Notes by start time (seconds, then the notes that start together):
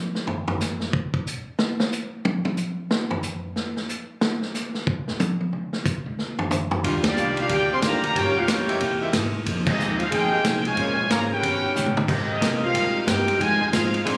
0.15 snare
0.27 floor tom
0.48 floor tom
0.60 snare, hi-hat pedal
0.80 snare
0.93 kick
1.14 kick
1.27 hi-hat pedal
1.59 snare
1.80 snare
1.92 hi-hat pedal
2.25 high tom
2.45 high tom
2.57 hi-hat pedal
2.91 snare
3.11 floor tom
3.23 hi-hat pedal
3.56 snare
3.77 snare
3.89 hi-hat pedal
4.21 snare
4.42 snare
4.54 snare, hi-hat pedal
4.74 snare
4.87 kick
5.08 snare
5.20 hi-hat pedal, high tom
5.41 high tom
5.53 mid tom
5.73 snare
5.85 kick, hi-hat pedal
6.06 mid tom
6.19 snare
6.39 floor tom
6.51 floor tom, hi-hat pedal
6.71 floor tom
6.83 D#2 D#3 G3 D4 F4, kick, ride
7.04 G3 A#3 D4, snare, ride
7.08 F4 G4 D5
7.16 C2 D#3 G3 D4 F4 G4, hi-hat pedal
7.37 A#3 D4 F4 G4 A#4 F5, ride
7.49 D2 D#3 G3 A#3 D4 F4 G4 A#4 D5 G5, kick, ride
7.72 C4 G#4 D5 F5 C6
7.82 D#2 D3 D#3 G3 A#3 D4 F4 G4 D5 F5 A#5, kick, snare, hi-hat pedal, ride
8.03 D3 G3 A#3 G4 D5 F5 A#5, ride
8.15 G2 G3 A#3 C#4 F4 G4 A#4 C#5 G5, kick, ride
8.27 F2
8.37 C#2 A#3 C#4 F4 G4 A#4 F5
8.48 F2 G3 A#3 C#4 F4 G4 A#4 C#5 G5, kick, snare, hi-hat pedal, ride
8.68 C3 G#3 A#3 E4, ride
8.80 E2 C3 A#3 E4 G#4, kick, ride
9.01 C3 G#3 A#3 E4
9.13 G#2 C3 A#3 E4 G#4, kick, snare, hi-hat pedal, ride
9.46 F2 F3 A#3 D#4 G#4, kick, ride
9.66 G#3 C4 D#4 G4 G#4 D#5, kick, crash
9.79 D#2 F3 A#3 D#4 G#4, hi-hat pedal
9.99 G#3 C4 D#4 F4 G#4 C5 F5, ride
10.11 D2 F3 A#3 C4 D#4 G#4 C5 G5, kick, ride
10.32 D#3 G#3 A#3 G4, muted upright bass stroke
10.44 C2 F3 A#3 D#4 G#4, kick, snare, hi-hat pedal, ride
10.65 C#3 F3 G#3 F4 C5 C#5 G#5, ride
10.77 A#1 C#3 A#3 C#4 G#4 C5, kick, ride
10.99 muted upright bass stroke
11.10 G#1 C#3 F3 A#3 C4 C#4 G#4 C5 C#5 F5 A#5, kick, snare, hi-hat pedal, ride
11.31 B3 C#4 G4 B4 F#5 G5
11.43 G1 D#3 B3 C#4 G4, kick, ride
11.76 A1 D#3 B3 C#4 G4, hi-hat pedal, mid tom
11.86 mid tom
11.97 mid tom
12.08 G#1 C3 G#3 A#3 C4 G4 A#4, kick, crash
12.31 G3 C4 D#4 G4 A#4 D#5
12.41 C2 C3 G#3 A#3 C4 G4 A#4, kick, snare, hi-hat pedal, ride
12.63 G3 C4 D#4 F4 A#4 C5 F5
12.73 D#2 G#3 C4 G4 A#4, kick, ride
12.95 muted upright bass stroke
13.06 G2 G#3 C4 D#4 G4 A#4 C5 G5, kick, snare, hi-hat pedal, ride
13.28 ride
13.39 F2 C3 D#3 F3 G#3 C4 D#4 F4 G#4 C5 D#5 G#5, kick, ride
13.60 C3 D#3 G#3 F4 C5 D#5 G#5
13.72 G#2 F3 G#3 C4 D#4 F4 G#4 C5 F5, kick, snare, hi-hat pedal, ride
13.94 ride
14.04 A#2 D3 F3 G#3 A#3 C4 D4 G#4 D5 F5 C6, kick, ride